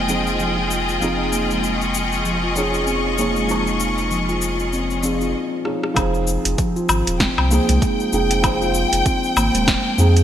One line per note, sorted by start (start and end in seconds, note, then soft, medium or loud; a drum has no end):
0.00 0.99 F1 medium
0.00 0.08 F3 medium
0.00 5.35 F3 medium
0.00 0.08 C4 medium
0.00 0.09 D#4 medium
0.00 5.35 F4 medium
0.00 0.10 G#4 medium
0.00 5.35 G#4 medium
0.00 1.04 C5 medium
0.00 5.35 D#5 medium
0.00 2.87 G5 medium
0.08 0.20 F3 medium
0.08 0.21 C4 medium
0.08 0.21 D#4 medium
0.08 0.21 G#4 medium
0.08 cabasa medium
0.27 cabasa soft
0.40 0.56 F3 medium
0.40 cabasa soft
0.58 0.70 F4 medium
0.71 cabasa medium
0.89 cabasa soft
1.00 5.35 F1 medium
1.00 2.52 F3 medium
1.00 1.31 C4 medium
1.00 2.54 D#4 medium
1.00 cabasa soft
1.04 2.54 G#4 loud
1.32 1.43 A#3 medium
1.32 cabasa medium
1.51 1.63 G#3 medium
1.51 cabasa soft
1.64 cabasa soft
1.71 5.35 C#6 medium
1.82 cabasa soft
1.94 cabasa medium
2.12 cabasa soft
2.25 2.42 F3 medium
2.25 cabasa soft
2.43 2.56 F4 medium
2.55 3.14 F3 medium
2.55 3.15 C#4 medium
2.55 3.15 D#4 medium
2.55 3.16 G#4 loud
2.55 cabasa medium
2.74 cabasa soft
2.87 3.17 C4 medium
2.87 cabasa soft
3.17 3.46 F3 medium
3.17 3.28 A#3 medium
3.17 3.46 C#4 medium
3.17 3.46 D#4 medium
3.17 3.47 G#4 medium
3.17 cabasa medium
3.36 3.49 G#3 medium
3.36 cabasa soft
3.47 5.00 F3 medium
3.47 5.01 D#4 medium
3.47 5.02 C#6 loud
3.47 cabasa soft
3.67 cabasa soft
3.80 cabasa medium
3.98 cabasa soft
4.11 4.27 F3 medium
4.11 cabasa soft
4.29 4.41 F4 medium
4.29 cabasa soft
4.42 cabasa medium
4.60 cabasa soft
4.73 4.89 C4 medium
4.73 cabasa soft
4.90 cabasa soft
5.03 5.62 F3 medium
5.03 5.20 C4 medium
5.03 5.63 D#4 medium
5.03 5.63 G#4 medium
5.03 cabasa medium
5.21 5.34 F4 medium
5.21 cabasa soft
5.64 5.93 F3 medium
5.64 5.93 C#4 medium
5.64 5.94 D#4 medium
5.64 5.94 G#4 medium
5.64 cross-stick medium
5.83 cross-stick medium
5.94 6.38 F1 loud
5.94 7.47 F3 loud
5.94 7.47 C4 medium
5.94 7.48 D#4 medium
5.94 kick loud
5.94 closed hi-hat soft
5.94 cabasa soft
5.94 low woodblock medium
5.98 7.49 G#4 loud
6.14 cabasa soft
6.27 cabasa medium
6.45 6.55 F1 medium
6.45 closed hi-hat medium
6.45 cabasa soft
6.58 6.74 F3 medium
6.58 kick loud
6.58 closed hi-hat soft
6.58 cabasa soft
6.76 6.89 F4 medium
6.76 cabasa soft
6.89 7.02 G#1 medium
6.89 cabasa medium
6.89 low woodblock medium
7.07 7.28 D#1 medium
7.07 closed hi-hat medium
7.07 cabasa soft
7.19 7.50 C4 medium
7.19 10.23 G5 medium
7.19 kick loud
7.19 snare medium
7.19 closed hi-hat soft
7.19 cabasa soft
7.38 7.59 C2 medium
7.38 low woodblock medium
7.50 8.09 F3 medium
7.50 7.61 A#3 loud
7.50 8.10 C4 medium
7.50 8.10 D#4 medium
7.50 8.10 G#4 loud
7.50 cabasa medium
7.69 7.78 C2 loud
7.69 7.81 G#3 medium
7.69 closed hi-hat medium
7.69 cabasa soft
7.82 kick loud
7.82 closed hi-hat soft
7.82 cabasa soft
8.00 cabasa soft
8.12 8.85 F1 medium
8.12 8.40 F3 medium
8.12 8.41 C4 medium
8.12 8.41 D#4 medium
8.12 8.41 G#4 loud
8.12 cabasa medium
8.31 closed hi-hat medium
8.31 cabasa soft
8.42 9.95 F3 loud
8.42 8.60 F3 medium
8.42 9.95 C4 medium
8.42 9.96 D#4 medium
8.42 kick loud
8.42 closed hi-hat soft
8.42 cabasa soft
8.42 low woodblock medium
8.46 9.97 C5 loud
8.62 8.74 F4 medium
8.62 cabasa soft
8.74 cabasa medium
8.93 9.02 F1 medium
8.93 closed hi-hat medium
8.93 cabasa soft
9.06 9.35 C4 medium
9.06 kick loud
9.06 closed hi-hat soft
9.06 cabasa soft
9.24 cabasa soft
9.36 9.50 G#1 medium
9.36 9.47 A#3 medium
9.36 cabasa medium
9.36 low woodblock medium
9.54 9.76 D#1 medium
9.54 9.67 G#3 medium
9.54 closed hi-hat medium
9.54 cabasa soft
9.68 kick loud
9.68 snare medium
9.68 closed hi-hat soft
9.68 cabasa medium
9.98 10.23 F2 medium
9.98 10.10 F3 loud
9.98 10.11 C4 medium
9.98 10.11 D#4 medium
9.98 10.11 G#4 loud
9.98 cabasa medium
10.17 closed hi-hat medium
10.17 cabasa soft